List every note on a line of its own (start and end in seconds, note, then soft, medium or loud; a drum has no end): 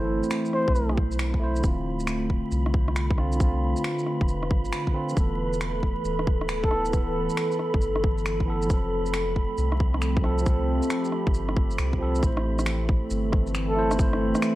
0.00 0.22 G1 medium
0.00 1.60 E3 medium
0.00 1.39 A3 medium
0.00 8.65 A3 medium
0.00 1.60 C4 medium
0.00 1.41 E4 medium
0.00 1.60 E4 medium
0.00 1.43 C5 loud
0.00 12.22 B5 medium
0.23 shaker medium
0.31 finger snap loud
0.31 shaker medium
0.45 shaker soft
0.53 0.98 C5 medium
0.53 cross-stick soft
0.68 1.63 B1 medium
0.68 kick loud
0.75 shaker medium
0.89 cross-stick medium
0.97 kick loud
1.12 shaker soft
1.19 finger snap loud
1.19 shaker medium
1.34 kick medium
1.39 1.61 A3 medium
1.39 1.62 E4 medium
1.43 1.63 C5 loud
1.56 3.14 D3 medium
1.56 shaker medium
1.63 2.42 D1 loud
1.63 5.13 D3 medium
1.63 3.38 C4 medium
1.63 3.16 C4 medium
1.63 5.13 F4 medium
1.63 kick loud
1.63 shaker medium
1.67 3.18 F4 medium
2.00 shaker medium
2.07 finger snap loud
2.07 shaker medium
2.30 kick medium
2.51 3.75 C2 medium
2.51 shaker medium
2.66 cross-stick medium
2.74 kick loud
2.88 cross-stick soft
2.96 finger snap loud
2.96 shaker soft
3.10 kick loud
3.16 3.35 D3 medium
3.16 3.38 C4 medium
3.16 3.39 F4 loud
3.16 cross-stick soft
3.32 4.91 D3 medium
3.32 shaker medium
3.40 4.93 C4 medium
3.40 8.65 B4 medium
3.40 kick loud
3.40 shaker medium
3.44 4.95 F4 medium
3.77 shaker soft
3.84 finger snap loud
3.84 shaker medium
3.99 shaker soft
4.06 cross-stick soft
4.21 4.52 E1 medium
4.21 kick loud
4.28 shaker soft
4.43 cross-stick medium
4.51 4.71 G1 medium
4.51 kick loud
4.65 shaker soft
4.73 finger snap loud
4.73 shaker soft
4.87 kick medium
4.92 5.14 D3 medium
4.92 5.15 C4 medium
4.92 5.16 F4 loud
5.09 6.67 E3 medium
5.09 shaker medium
5.16 5.95 E1 loud
5.16 8.66 E3 medium
5.16 6.69 B3 medium
5.16 10.42 A4 medium
5.16 kick loud
5.16 shaker soft
5.20 6.71 A4 medium
5.53 shaker soft
5.61 finger snap loud
5.61 shaker soft
5.83 kick medium
6.05 7.28 D1 medium
6.05 shaker soft
6.19 cross-stick medium
6.27 kick loud
6.41 cross-stick soft
6.49 finger snap loud
6.49 shaker soft
6.64 6.86 A4 medium
6.64 kick loud
6.69 6.88 E3 medium
6.69 6.91 B3 medium
6.69 6.92 A4 loud
6.69 cross-stick medium
6.85 shaker medium
6.89 8.44 E3 medium
6.89 8.46 B3 medium
6.89 kick loud
6.89 shaker medium
6.97 8.48 A4 medium
7.30 shaker soft
7.37 finger snap loud
7.37 shaker soft
7.52 shaker soft
7.59 cross-stick soft
7.74 8.69 G1 medium
7.74 kick loud
7.81 shaker soft
7.96 cross-stick medium
8.04 kick loud
8.18 shaker soft
8.26 finger snap medium
8.26 shaker soft
8.40 kick medium
8.46 8.67 E3 medium
8.46 8.68 B3 medium
8.46 8.69 A4 loud
8.62 10.20 F3 medium
8.62 shaker medium
8.70 9.49 F1 loud
8.70 12.19 F3 medium
8.70 12.19 A3 medium
8.70 12.19 C4 medium
8.70 10.22 C4 medium
8.70 kick loud
8.70 shaker medium
8.74 10.24 A4 medium
9.06 shaker soft
9.14 finger snap loud
9.14 shaker medium
9.36 kick medium
9.58 10.81 C2 medium
9.58 shaker medium
9.72 cross-stick medium
9.80 kick loud
9.94 cross-stick medium
10.02 finger snap medium
10.02 shaker medium
10.17 kick loud
10.21 10.40 F3 medium
10.21 10.44 C4 medium
10.21 10.45 A4 loud
10.21 cross-stick medium
10.38 11.96 F3 medium
10.38 shaker medium
10.46 11.98 C4 medium
10.46 12.21 G4 medium
10.46 12.00 A4 medium
10.46 kick loud
10.46 shaker medium
10.82 shaker soft
10.90 finger snap loud
10.90 shaker medium
11.05 shaker soft
11.12 cross-stick soft
11.27 11.78 G1 medium
11.27 kick loud
11.34 shaker medium
11.49 cross-stick medium
11.57 kick loud
11.71 shaker soft
11.78 12.22 C2 medium
11.78 finger snap medium
11.78 shaker medium
11.93 kick medium
11.99 12.20 F3 loud
11.99 12.21 C4 medium
11.99 12.22 A4 loud
12.15 13.73 A3 medium
12.15 shaker medium
12.22 13.01 A1 loud
12.22 14.55 E3 medium
12.22 14.55 A3 medium
12.22 14.55 C4 medium
12.22 13.75 E4 medium
12.22 14.55 A4 loud
12.22 14.55 B5 medium
12.22 kick loud
12.22 shaker medium
12.27 13.77 C5 medium
12.37 cross-stick medium
12.59 cross-stick medium
12.59 shaker medium
12.66 finger snap loud
12.66 shaker medium
12.89 kick loud
13.10 14.34 G1 medium
13.10 shaker medium
13.32 kick loud
13.32 cross-stick medium
13.47 shaker soft
13.55 finger snap loud
13.55 shaker medium
13.69 13.92 A4 medium
13.75 13.93 A3 medium
13.75 13.97 E4 medium
13.75 13.98 C5 loud
13.91 14.55 A3 medium
13.91 cross-stick medium
13.91 shaker medium
13.98 14.55 E4 medium
13.98 kick loud
13.98 shaker medium
14.02 14.55 C5 medium
14.13 cross-stick medium
14.35 cross-stick medium
14.35 shaker medium
14.42 finger snap loud
14.42 shaker medium